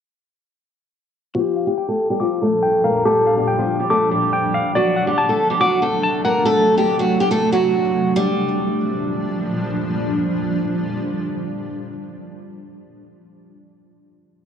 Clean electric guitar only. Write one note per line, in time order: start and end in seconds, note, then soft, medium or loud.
1.35 2.42 G4 medium
1.56 2.63 F5 medium
1.78 2.61 G5 medium
2.20 3.26 D6 loud
2.63 3.46 G5 medium
2.84 3.25 F5 medium
3.05 4.12 G4 medium
3.27 4.33 F5 medium
3.47 4.32 G5 medium
3.90 4.75 D6 loud
4.33 4.75 G5 medium
4.54 4.75 F5 medium
4.75 5.82 D5 medium
4.96 6.03 F#5 medium
5.18 5.60 A5 medium
5.61 6.67 D6 loud
6.03 6.24 A5 medium
6.25 7.31 F#5 medium